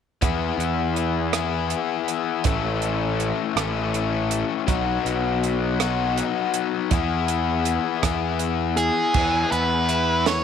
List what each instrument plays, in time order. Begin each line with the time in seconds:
0.22 picked electric bass E2, overdriven electric guitar E3 B3 E4 G#4, kick, closed hi-hat
0.58 picked electric bass E2, closed hi-hat
0.96 closed hi-hat
1.33 overdriven electric guitar E3 B3 E4 G#4, cross-stick, closed hi-hat
1.70 closed hi-hat
2.08 closed hi-hat
2.44 picked electric bass A1, overdriven electric guitar E3 A3 C#4 A4, kick, closed hi-hat
2.82 closed hi-hat
3.20 closed hi-hat
3.56 picked electric bass A1, overdriven electric guitar E3 A3 C#4 A4, cross-stick, closed hi-hat
3.94 closed hi-hat
4.31 closed hi-hat
4.66 picked electric bass B1, overdriven electric guitar F#3 B3 D#4 F#4, kick, closed hi-hat
5.05 picked electric bass B1, closed hi-hat
5.44 closed hi-hat
5.80 overdriven electric guitar F#3 B3 D#4 F#4, cross-stick, closed hi-hat
6.18 closed hi-hat
6.54 closed hi-hat
6.91 picked electric bass E2, overdriven electric guitar E3 B3 E4 G#4, kick, closed hi-hat
7.28 closed hi-hat
7.65 closed hi-hat
8.02 picked electric bass E2, overdriven electric guitar E3 B3 E4 G#4, kick, cross-stick, closed hi-hat
8.39 closed hi-hat
8.77 lead electric guitar G#4, closed hi-hat
9.14 picked electric bass E2, overdriven electric guitar E3, kick, crash
9.51 picked electric bass E2, overdriven electric guitar B3, lead electric guitar B4, closed hi-hat
9.89 overdriven electric guitar E4, closed hi-hat
10.26 overdriven electric guitar E3, lead electric guitar C#5, snare, closed hi-hat